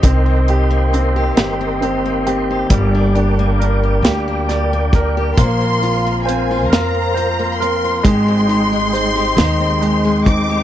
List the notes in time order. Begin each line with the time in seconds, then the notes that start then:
Already playing: G#3 C4
0.02 C2 D#3 C4 G4 A#4 D#5 G5 C6, kick, closed hi-hat
0.26 C4
0.48 G4, closed hi-hat
0.71 A#3
0.93 C4, closed hi-hat
1.16 G4
1.36 G1 D#3 G4, snare, closed hi-hat
1.61 C4
1.81 C4 G4, closed hi-hat
2.06 A#3
2.27 C4 G4, closed hi-hat
2.51 G4
2.70 G1 G3 A#3 G4 D5 D6, kick, closed hi-hat
2.95 D4
3.15 D4 G4, closed hi-hat
3.39 A#3
3.59 D4 A#4, closed hi-hat
3.83 G4
4.02 D2 A#3 G4, snare, closed hi-hat
4.07 G4
4.28 D4
4.49 G4 D5, snare, closed hi-hat
4.73 A#3
4.93 D4 A#4, kick, closed hi-hat
5.17 G4
5.36 A#1 F3 A#3 C5 F5 C6, kick, closed hi-hat
5.41 F4
5.61 C4
5.81 F4, closed hi-hat
6.07 A#3
6.24 C5 G#5
6.29 C4, closed hi-hat
6.51 F4
6.69 F2 A#4 A#5, closed hi-hat
6.73 F3 F4, snare
6.94 C4
7.14 F4 C5, closed hi-hat
7.39 A#3
7.57 A#4 C6
7.62 C4, closed hi-hat
7.84 F4
8.02 G#1 D#3 G#3 D#5 G5 C6, kick, closed hi-hat
8.06 G4
8.28 C4
8.47 D#4 G4, closed hi-hat
8.72 G#3
8.93 C4 C5, closed hi-hat
9.16 G4
9.37 D#2 D#3 D#4 G4, snare, closed hi-hat
9.60 C4
9.82 G#3 G4, closed hi-hat
10.05 G#3
10.26 C4 D#4 D6, kick, closed hi-hat
10.49 G4